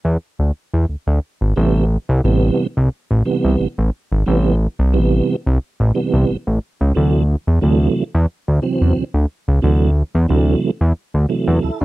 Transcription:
0.05 0.17 E2 loud
0.39 0.52 D2 medium
0.74 0.86 E2 medium
0.89 0.96 D2 soft
1.07 1.19 D2 medium
1.41 1.53 G#1 medium
1.56 1.97 A1 loud
1.56 1.85 C3 medium
1.56 1.85 E3 medium
1.56 1.85 G3 medium
1.56 1.85 B3 medium
2.09 2.21 C2 loud
2.24 2.51 A1 loud
2.24 2.67 C3 medium
2.24 2.67 E3 medium
2.24 2.67 G3 medium
2.24 2.67 B3 loud
2.77 2.89 C2 loud
3.11 3.23 A1 medium
3.25 3.68 C3 medium
3.25 3.68 E3 medium
3.25 3.68 G3 medium
3.25 3.68 B3 loud
3.44 3.56 C2 medium
3.78 3.90 A1 medium
4.12 4.24 G#1 medium
4.26 4.67 A1 loud
4.26 4.55 C3 medium
4.26 4.55 E3 medium
4.26 4.55 G3 medium
4.26 4.55 B3 medium
4.79 4.97 C2 loud
4.93 5.21 A1 loud
4.93 5.36 C3 medium
4.93 5.36 E3 medium
4.93 5.36 G3 medium
4.93 5.36 B3 loud
5.46 5.58 C2 loud
5.80 5.92 A1 loud
5.94 6.37 C3 medium
5.94 6.37 E3 medium
5.94 6.37 G3 medium
5.94 6.37 B3 medium
6.13 6.25 C2 medium
6.30 6.37 A1 soft
6.47 6.59 A1 medium
6.81 6.93 C#2 medium
6.94 7.36 D2 loud
6.94 7.23 C3 medium
6.94 7.23 E3 medium
6.94 7.23 F#3 medium
6.94 7.23 A3 medium
7.47 7.59 E2 medium
7.61 7.89 D2 medium
7.61 8.04 C3 medium
7.61 8.04 E3 medium
7.61 8.04 F#3 medium
7.61 8.04 A3 loud
8.15 8.26 E2 loud
8.48 8.60 D2 medium
8.62 9.04 C3 medium
8.62 9.04 E3 medium
8.62 9.04 F#3 medium
8.62 9.04 C4 medium
8.81 8.93 E2 medium
8.97 9.04 D2 soft
9.14 9.26 D2 medium
9.48 9.60 C#2 medium
9.62 10.03 D2 loud
9.62 9.90 C3 medium
9.62 9.90 E3 medium
9.62 9.90 F#3 medium
9.62 9.91 A3 medium
10.15 10.27 E2 loud
10.28 10.56 D2 medium
10.28 10.70 C3 medium
10.28 10.71 E3 medium
10.28 10.71 F#3 medium
10.28 10.71 A3 loud
10.81 10.93 E2 loud
11.14 11.26 D2 medium
11.29 11.71 C3 medium
11.29 11.71 E3 medium
11.29 11.71 F#3 medium
11.29 11.63 A3 medium
11.48 11.60 E2 loud
11.63 11.71 D2 soft
11.63 11.80 E4 medium
11.63 11.79 A4 medium
11.80 11.85 D2 medium
11.80 11.85 C4 medium
11.80 11.85 F#4 medium

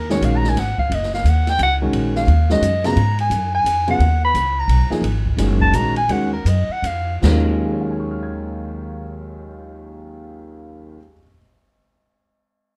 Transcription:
0.00 0.20 D#2 medium
0.00 0.11 A#4 medium
0.10 0.54 D#3 medium
0.10 0.54 G#3 medium
0.10 0.54 C#4 medium
0.10 0.55 F#4 medium
0.10 0.26 C#5 medium
0.10 snare medium
0.21 0.54 A#1 loud
0.21 0.38 F5 medium
0.21 hi-hat pedal medium
0.21 ride medium
0.37 0.50 A#5 medium
0.44 snare soft
0.49 0.61 G#5 medium
0.55 0.76 G#1 medium
0.55 snare soft
0.55 ride medium
0.59 0.78 F#5 medium
0.78 0.96 F5 medium
0.78 muted upright bass stroke soft
0.78 kick soft
0.90 1.23 F#1 medium
0.90 ride medium
0.94 1.14 D#5 medium
1.03 snare soft
1.14 1.31 F5 medium
1.14 snare soft
1.24 1.58 D#2 medium
1.24 hi-hat pedal medium
1.24 ride medium
1.29 1.51 F#5 medium
1.47 1.60 G5 loud
1.47 snare soft
1.47 ride soft
1.59 1.92 C#2 medium
1.59 hi-hat pedal medium
1.59 ride medium
1.63 1.75 F#5 medium
1.82 2.26 D#3 medium
1.82 2.26 G#3 medium
1.82 2.26 C#4 medium
1.82 2.27 F#4 medium
1.93 2.26 A#1 medium
1.93 ride medium
2.15 2.48 F5 medium
2.15 snare soft
2.27 2.61 D#2 medium
2.27 ride soft
2.50 2.62 D#3 medium
2.50 2.62 G#3 medium
2.50 2.62 C#4 medium
2.50 2.62 F#4 medium
2.50 2.88 D#5 loud
2.50 snare medium
2.61 2.95 F#2 medium
2.61 hi-hat pedal medium
2.61 ride medium
2.84 2.96 C#3 medium
2.84 2.96 F#3 medium
2.84 2.96 B3 medium
2.84 2.96 F4 medium
2.84 3.20 A#5 loud
2.84 snare medium
2.84 ride soft
2.96 3.29 G#2 medium
2.96 ride medium
3.19 3.52 G#5 medium
3.19 ride soft
3.30 3.64 F#2 medium
3.30 hi-hat pedal medium
3.30 ride medium
3.55 3.86 G#5 loud
3.64 3.99 F2 medium
3.64 hi-hat pedal medium
3.64 ride medium
3.87 3.99 C#3 medium
3.87 3.99 F#3 medium
3.87 3.99 B3 medium
3.87 3.99 F4 medium
3.87 4.21 F#5 medium
3.87 ride soft
3.99 4.33 D#2 medium
3.99 ride medium
4.24 4.61 B5 loud
4.34 4.67 C#2 medium
4.34 hi-hat pedal medium
4.34 ride medium
4.59 4.92 A#5 medium
4.68 4.81 B1 medium
4.68 ride medium
4.79 4.90 G#1 soft
4.90 5.01 F#1 medium
4.90 5.02 F3 medium
4.90 5.02 A#3 medium
4.90 5.02 D#4 medium
4.90 5.02 G#4 medium
4.90 snare soft
5.02 5.36 G#1 medium
5.02 ride medium
5.25 kick soft
5.37 5.71 F#1 medium
5.37 5.72 D#3 medium
5.37 5.72 G#3 medium
5.37 5.72 C#4 medium
5.37 5.73 F#4 medium
5.37 snare soft
5.37 hi-hat pedal soft
5.37 ride medium
5.60 5.76 A5 loud
5.60 kick medium
5.72 6.07 A#1 medium
5.72 5.94 D#3 medium
5.72 5.94 G#3 medium
5.72 5.94 C#4 medium
5.72 5.94 F#4 medium
5.72 5.96 A#5 loud
5.72 hi-hat pedal medium
5.72 ride medium
5.96 6.13 G#5 loud
5.96 ride soft
6.08 6.44 D#2 medium
6.08 6.30 D#3 medium
6.08 6.30 G#3 medium
6.08 6.31 C#4 medium
6.08 6.31 F#4 medium
6.08 6.32 F#5 medium
6.08 ride medium
6.33 6.50 A#4 medium
6.45 6.68 F#2 medium
6.45 6.73 D#5 medium
6.45 hi-hat pedal soft
6.45 ride medium
6.69 6.88 F#5 loud
6.69 muted upright bass stroke soft
6.82 7.21 F2 medium
6.82 7.17 F5 medium
6.82 hi-hat pedal medium
6.82 ride medium
7.23 10.95 D#2 medium
7.23 10.91 D#2 medium
7.23 10.96 D#3 medium
7.23 10.97 F#3 medium
7.23 10.97 G#3 medium
7.23 10.98 C#4 medium
7.23 10.98 F4 medium
7.23 snare loud
7.23 china medium
7.65 11.13 G#4 soft
7.73 11.17 C#5 soft
7.81 11.21 F5 soft
7.91 11.26 G#5 soft
8.00 11.30 C#6 soft
8.11 11.36 F6 soft
8.23 11.42 G#6 soft

